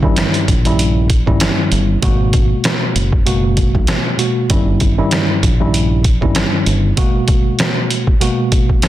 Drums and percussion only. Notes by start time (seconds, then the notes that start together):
0.03 kick
0.16 cross-stick, snare, closed hi-hat
0.34 closed hi-hat
0.48 kick, closed hi-hat
0.65 closed hi-hat
0.79 closed hi-hat
1.10 kick, closed hi-hat
1.27 kick
1.40 cross-stick, snare, closed hi-hat
1.72 closed hi-hat
2.02 kick, closed hi-hat
2.33 kick, closed hi-hat
2.64 cross-stick, snare, closed hi-hat
2.96 closed hi-hat
3.13 kick
3.27 closed hi-hat
3.57 kick, closed hi-hat
3.75 kick
3.87 cross-stick, snare, closed hi-hat
4.19 closed hi-hat
4.50 kick, closed hi-hat
4.80 kick, closed hi-hat
5.11 cross-stick, snare, closed hi-hat
5.43 kick, closed hi-hat
5.74 closed hi-hat
6.04 kick, closed hi-hat
6.22 kick
6.35 cross-stick, snare, closed hi-hat
6.66 closed hi-hat
6.97 kick, closed hi-hat
7.28 kick, closed hi-hat
7.59 cross-stick, snare, closed hi-hat
7.90 closed hi-hat
8.07 kick
8.21 closed hi-hat
8.52 kick, closed hi-hat
8.69 kick
8.82 cross-stick, snare, closed hi-hat